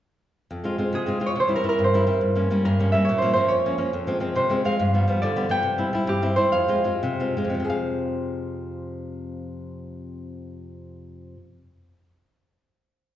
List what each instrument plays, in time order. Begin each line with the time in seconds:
0.51 nylon-string guitar F2
0.64 nylon-string guitar G#3 C4 F4
0.78 nylon-string guitar G#3 C4 F4
0.93 nylon-string guitar C3, harp G#4
1.06 nylon-string guitar G#3 C4 F4
1.20 nylon-string guitar G#3 C4 F4
1.26 harp C#5
1.36 nylon-string guitar C3
1.40 harp C5
1.48 nylon-string guitar G3 C4 E4
1.56 harp A#4
1.64 nylon-string guitar G3 C4 E4
1.69 harp A#4
1.79 nylon-string guitar G2
1.84 harp C5
1.94 nylon-string guitar G3 C4 E4
2.07 nylon-string guitar G3 C4 E4
2.21 nylon-string guitar G2
2.35 nylon-string guitar G3 A#3 C#4
2.50 nylon-string guitar G3 A#3 C#4
2.65 nylon-string guitar G2, harp A#4
2.80 nylon-string guitar G3 A#3 C#4
2.92 nylon-string guitar G3 A#3 C#4, harp E5
3.05 harp C#5
3.09 nylon-string guitar A#2
3.18 nylon-string guitar F3, harp C5
3.22 nylon-string guitar A#3 C#4
3.33 nylon-string guitar F3 A#3 C#4, harp C5
3.48 nylon-string guitar F2, harp C#5
3.66 nylon-string guitar F3 A#3 C#4
3.78 nylon-string guitar F3 A#3 C#4
3.93 nylon-string guitar F2
4.07 nylon-string guitar F3 G#3 C4
4.20 nylon-string guitar F3 G#3 C4
4.36 nylon-string guitar C3, harp C5
4.50 nylon-string guitar F3 G#3 C4
4.65 nylon-string guitar F3 G#3 C4, harp F5
4.80 nylon-string guitar G2
4.94 nylon-string guitar F3 G3 B3
5.08 nylon-string guitar F3 G3 B3
5.22 nylon-string guitar D3, harp D5
5.36 nylon-string guitar F3 G3 B3
5.49 nylon-string guitar F3 G3 B3, harp G5
5.63 nylon-string guitar C3
5.78 nylon-string guitar G3 C4 E4
5.93 nylon-string guitar G3 C4 E4
6.07 nylon-string guitar G2, harp G4
6.22 nylon-string guitar G3 C4 E4
6.36 nylon-string guitar G3 C4 E4, harp C5
6.52 nylon-string guitar F2, harp F5
6.68 nylon-string guitar G#3 C4 F4
6.84 nylon-string guitar G#3 C4 F4
7.03 nylon-string guitar C3
7.20 nylon-string guitar G#3 C4 F4
7.37 nylon-string guitar G#3 C4 F4
7.45 nylon-string guitar F2
7.50 nylon-string guitar C3
7.54 nylon-string guitar F3
7.60 nylon-string guitar C4
7.64 nylon-string guitar G#4
7.70 nylon-string guitar F5